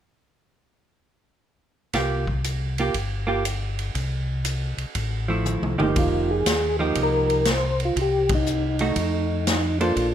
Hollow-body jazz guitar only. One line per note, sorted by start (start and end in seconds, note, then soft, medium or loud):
1.94 2.24 A#3 soft
1.94 2.25 F4 soft
1.94 2.25 G4 soft
2.80 2.94 A#3 soft
2.80 2.94 F4 soft
2.80 2.94 G4 soft
3.27 3.42 A#3 soft
3.27 3.43 F4 medium
3.27 3.43 G4 medium
5.28 5.75 F3 soft
5.28 5.76 A3 soft
5.28 5.76 E4 soft
5.78 6.42 F3 soft
5.78 6.42 A#3 soft
5.78 6.42 D#4 medium
5.78 6.42 G4 medium
6.79 7.43 F3 soft
6.79 7.43 A#3 soft
6.79 7.43 D#4 medium
6.79 7.43 G4 medium
8.81 9.44 A3 medium
8.81 9.44 D#4 medium
8.81 9.44 F#4 medium
9.81 10.14 A#3 medium
9.81 10.14 D4 medium
9.81 10.14 A4 soft
9.81 10.14 C5 medium